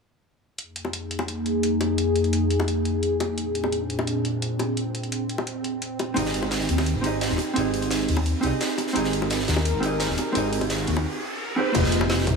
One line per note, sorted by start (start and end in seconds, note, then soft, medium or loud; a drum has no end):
0.58 3.35 F2 medium
0.58 3.35 A#3 medium
0.58 3.35 D#4 medium
0.58 6.13 G#4 medium
0.58 closed hi-hat medium
0.76 closed hi-hat medium
0.85 high bongo soft
0.93 closed hi-hat medium
1.11 closed hi-hat medium
1.19 high bongo medium
1.28 closed hi-hat medium
1.46 closed hi-hat medium
1.63 closed hi-hat medium
1.81 closed hi-hat medium
1.81 high bongo medium
1.98 closed hi-hat medium
2.16 closed hi-hat medium
2.24 closed hi-hat soft
2.33 closed hi-hat medium
2.50 closed hi-hat medium
2.60 high bongo medium
2.68 closed hi-hat medium
2.85 closed hi-hat medium
3.03 closed hi-hat medium
3.20 closed hi-hat medium
3.20 high bongo medium
3.38 6.14 A#2 medium
3.38 11.01 C4 medium
3.38 6.14 D4 medium
3.38 closed hi-hat medium
3.55 closed hi-hat medium
3.64 high bongo medium
3.72 closed hi-hat medium
3.90 closed hi-hat medium
3.99 high bongo medium
4.07 closed hi-hat medium
4.25 closed hi-hat medium
4.42 closed hi-hat medium
4.59 closed hi-hat medium
4.59 high bongo medium
4.77 closed hi-hat medium
4.95 closed hi-hat medium
5.03 closed hi-hat soft
5.12 closed hi-hat medium
5.29 closed hi-hat medium
5.38 high bongo medium
5.47 closed hi-hat medium
5.64 closed hi-hat medium
5.82 closed hi-hat medium
5.99 closed hi-hat medium
5.99 high bongo medium
6.14 6.68 G#1 medium
6.14 7.00 C4 medium
6.14 7.01 D#4 medium
6.14 7.02 G4 medium
6.14 7.02 G#4 medium
6.14 closed hi-hat medium
6.19 7.03 D#5 medium
6.26 snare soft
6.34 closed hi-hat medium
6.42 high bongo medium
6.51 snare loud
6.51 closed hi-hat medium
6.60 snare medium
6.69 6.94 D#2 loud
6.69 closed hi-hat medium
6.77 snare soft
6.77 high bongo medium
6.86 closed hi-hat medium
6.95 7.29 G#1 medium
7.01 7.52 C4 medium
7.01 7.54 D#4 medium
7.01 7.54 G4 medium
7.01 closed hi-hat medium
7.05 7.55 G#4 medium
7.05 7.56 D#5 medium
7.21 snare loud
7.21 closed hi-hat medium
7.30 7.38 D#1 medium
7.30 snare soft
7.38 closed hi-hat medium
7.38 high bongo medium
7.54 8.07 G#1 medium
7.54 8.40 C4 medium
7.54 8.41 D#4 medium
7.54 8.41 G4 medium
7.54 8.42 G#4 medium
7.54 closed hi-hat medium
7.59 8.43 D#5 medium
7.74 closed hi-hat medium
7.82 closed hi-hat soft
7.91 snare loud
7.91 closed hi-hat medium
8.08 8.33 D#2 loud
8.08 closed hi-hat medium
8.08 open hi-hat medium
8.17 high bongo medium
8.26 closed hi-hat medium
8.41 8.51 C2 loud
8.41 8.92 C4 medium
8.41 8.93 D#4 medium
8.41 8.94 G4 medium
8.41 8.94 G#4 medium
8.41 closed hi-hat medium
8.46 8.95 D#5 medium
8.61 snare loud
8.61 closed hi-hat medium
8.78 closed hi-hat medium
8.78 high bongo medium
8.87 snare soft
8.93 9.47 G#1 medium
8.93 9.79 C4 medium
8.93 9.80 D#4 medium
8.93 9.81 G4 medium
8.93 11.03 A#4 medium
8.93 closed hi-hat medium
8.93 riser medium
8.97 9.82 G#4 medium
8.97 9.82 D#5 loud
9.04 snare soft
9.13 closed hi-hat medium
9.22 high bongo medium
9.30 snare loud
9.30 closed hi-hat medium
9.39 snare medium
9.48 9.73 D#2 loud
9.48 snare loud
9.48 closed hi-hat medium
9.56 snare soft
9.56 high bongo medium
9.65 closed hi-hat medium
9.74 10.08 G#1 loud
9.80 10.31 C4 medium
9.80 10.33 D#4 medium
9.80 10.33 G4 medium
9.80 closed hi-hat medium
9.84 10.34 G#4 medium
9.84 10.35 D#5 medium
10.00 snare loud
10.00 closed hi-hat medium
10.09 10.17 D#1 loud
10.09 snare soft
10.18 closed hi-hat medium
10.18 high bongo medium
10.32 10.86 G#1 loud
10.32 11.19 C4 medium
10.32 11.20 D#4 medium
10.32 11.20 G4 medium
10.32 closed hi-hat loud
10.32 closed hi-hat medium
10.37 11.21 G#4 medium
10.37 11.22 D#5 loud
10.52 closed hi-hat medium
10.61 closed hi-hat soft
10.61 high bongo medium
10.70 snare loud
10.70 closed hi-hat medium
10.87 11.05 D#2 loud
10.87 closed hi-hat medium
10.87 open hi-hat medium
10.96 high bongo medium
11.56 11.72 C4 medium
11.56 11.73 D#4 medium
11.56 11.73 G4 medium
11.56 11.73 G#4 medium
11.56 11.74 C5 medium
11.72 12.26 F1 medium
11.72 12.36 A#3 medium
11.72 12.36 D#4 medium
11.72 12.36 F4 medium
11.72 12.36 G4 medium
11.72 kick loud
11.72 closed hi-hat medium
11.72 crash loud
11.72 impact medium
11.76 12.36 G#4 medium
11.76 12.36 D#5 loud
11.84 snare soft
11.92 closed hi-hat medium
11.92 closed hi-hat loud
12.01 high bongo medium
12.10 snare loud
12.10 closed hi-hat medium
12.19 snare medium
12.27 12.36 C2 loud
12.27 kick loud
12.27 closed hi-hat loud
12.27 closed hi-hat medium